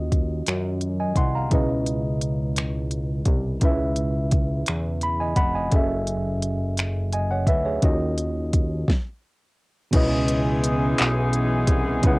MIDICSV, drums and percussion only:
0, 0, Header, 1, 2, 480
1, 0, Start_track
1, 0, Key_signature, 4, "minor"
1, 0, Tempo, 701754
1, 1036, Time_signature, 6, 3, 24, 8
1, 8338, End_track
2, 0, Start_track
2, 0, Title_t, "Drums"
2, 82, Note_on_c, 9, 36, 73
2, 82, Note_on_c, 9, 42, 56
2, 150, Note_off_c, 9, 36, 0
2, 150, Note_off_c, 9, 42, 0
2, 318, Note_on_c, 9, 42, 61
2, 330, Note_on_c, 9, 26, 97
2, 386, Note_off_c, 9, 42, 0
2, 398, Note_off_c, 9, 26, 0
2, 554, Note_on_c, 9, 42, 43
2, 622, Note_off_c, 9, 42, 0
2, 790, Note_on_c, 9, 36, 75
2, 792, Note_on_c, 9, 42, 58
2, 859, Note_off_c, 9, 36, 0
2, 860, Note_off_c, 9, 42, 0
2, 1033, Note_on_c, 9, 42, 59
2, 1036, Note_on_c, 9, 36, 97
2, 1102, Note_off_c, 9, 42, 0
2, 1104, Note_off_c, 9, 36, 0
2, 1274, Note_on_c, 9, 42, 48
2, 1343, Note_off_c, 9, 42, 0
2, 1515, Note_on_c, 9, 42, 59
2, 1583, Note_off_c, 9, 42, 0
2, 1754, Note_on_c, 9, 42, 57
2, 1766, Note_on_c, 9, 26, 93
2, 1822, Note_off_c, 9, 42, 0
2, 1834, Note_off_c, 9, 26, 0
2, 1990, Note_on_c, 9, 42, 43
2, 2059, Note_off_c, 9, 42, 0
2, 2226, Note_on_c, 9, 42, 55
2, 2228, Note_on_c, 9, 36, 80
2, 2295, Note_off_c, 9, 42, 0
2, 2297, Note_off_c, 9, 36, 0
2, 2471, Note_on_c, 9, 42, 55
2, 2474, Note_on_c, 9, 36, 87
2, 2539, Note_off_c, 9, 42, 0
2, 2543, Note_off_c, 9, 36, 0
2, 2709, Note_on_c, 9, 42, 49
2, 2778, Note_off_c, 9, 42, 0
2, 2951, Note_on_c, 9, 42, 56
2, 2957, Note_on_c, 9, 36, 76
2, 3020, Note_off_c, 9, 42, 0
2, 3025, Note_off_c, 9, 36, 0
2, 3190, Note_on_c, 9, 42, 62
2, 3202, Note_on_c, 9, 26, 98
2, 3258, Note_off_c, 9, 42, 0
2, 3270, Note_off_c, 9, 26, 0
2, 3430, Note_on_c, 9, 42, 45
2, 3498, Note_off_c, 9, 42, 0
2, 3667, Note_on_c, 9, 42, 57
2, 3668, Note_on_c, 9, 36, 80
2, 3736, Note_off_c, 9, 36, 0
2, 3736, Note_off_c, 9, 42, 0
2, 3910, Note_on_c, 9, 42, 58
2, 3914, Note_on_c, 9, 36, 98
2, 3978, Note_off_c, 9, 42, 0
2, 3983, Note_off_c, 9, 36, 0
2, 4152, Note_on_c, 9, 42, 47
2, 4221, Note_off_c, 9, 42, 0
2, 4394, Note_on_c, 9, 42, 61
2, 4462, Note_off_c, 9, 42, 0
2, 4633, Note_on_c, 9, 42, 55
2, 4645, Note_on_c, 9, 26, 96
2, 4701, Note_off_c, 9, 42, 0
2, 4713, Note_off_c, 9, 26, 0
2, 4873, Note_on_c, 9, 42, 48
2, 4942, Note_off_c, 9, 42, 0
2, 5108, Note_on_c, 9, 36, 82
2, 5109, Note_on_c, 9, 42, 57
2, 5176, Note_off_c, 9, 36, 0
2, 5178, Note_off_c, 9, 42, 0
2, 5351, Note_on_c, 9, 42, 57
2, 5354, Note_on_c, 9, 36, 98
2, 5419, Note_off_c, 9, 42, 0
2, 5423, Note_off_c, 9, 36, 0
2, 5593, Note_on_c, 9, 42, 48
2, 5661, Note_off_c, 9, 42, 0
2, 5836, Note_on_c, 9, 42, 64
2, 5837, Note_on_c, 9, 36, 78
2, 5904, Note_off_c, 9, 42, 0
2, 5906, Note_off_c, 9, 36, 0
2, 6074, Note_on_c, 9, 36, 87
2, 6085, Note_on_c, 9, 38, 77
2, 6142, Note_off_c, 9, 36, 0
2, 6154, Note_off_c, 9, 38, 0
2, 6790, Note_on_c, 9, 42, 75
2, 6792, Note_on_c, 9, 49, 90
2, 6793, Note_on_c, 9, 36, 118
2, 6859, Note_off_c, 9, 42, 0
2, 6860, Note_off_c, 9, 49, 0
2, 6862, Note_off_c, 9, 36, 0
2, 7033, Note_on_c, 9, 42, 51
2, 7101, Note_off_c, 9, 42, 0
2, 7276, Note_on_c, 9, 42, 70
2, 7344, Note_off_c, 9, 42, 0
2, 7513, Note_on_c, 9, 42, 68
2, 7525, Note_on_c, 9, 39, 113
2, 7581, Note_off_c, 9, 42, 0
2, 7593, Note_off_c, 9, 39, 0
2, 7751, Note_on_c, 9, 42, 48
2, 7819, Note_off_c, 9, 42, 0
2, 7986, Note_on_c, 9, 42, 78
2, 7987, Note_on_c, 9, 36, 85
2, 8054, Note_off_c, 9, 42, 0
2, 8055, Note_off_c, 9, 36, 0
2, 8229, Note_on_c, 9, 42, 69
2, 8233, Note_on_c, 9, 36, 120
2, 8297, Note_off_c, 9, 42, 0
2, 8301, Note_off_c, 9, 36, 0
2, 8338, End_track
0, 0, End_of_file